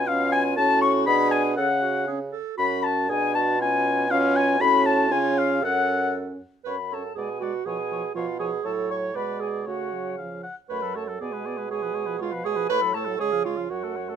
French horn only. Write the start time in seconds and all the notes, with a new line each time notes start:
0.08 C#4
0.58 C#4
1.07 D4
1.57 C#4
2.09 C#4
2.59 C#4
3.10 D4
3.61 C#4
4.11 C#4
4.60 C#4
5.11 C#4
5.63 C#4
6.66 C#4
6.92 C#4
7.16 G#3
7.41 G#3
7.66 F3
7.91 F3
8.15 F3
8.40 F3
8.65 F#3
9.14 G#3
9.66 A3
9.92 F#3
10.19 F3
10.70 A3
10.83 F#3
10.95 A3
11.08 F#3
11.20 B3
11.32 G#3
11.46 B3
11.57 G#3
11.70 G#3
11.82 F3
11.94 G#3
12.07 F3
12.20 G#3
12.32 F3
12.45 G#3
12.56 F3
12.70 A3
12.81 F#3
12.95 A3
13.07 F#3
13.20 G#3
13.32 F3
13.46 G#3
13.58 F3
13.71 F#3
13.84 A3
13.96 F#3
14.10 A3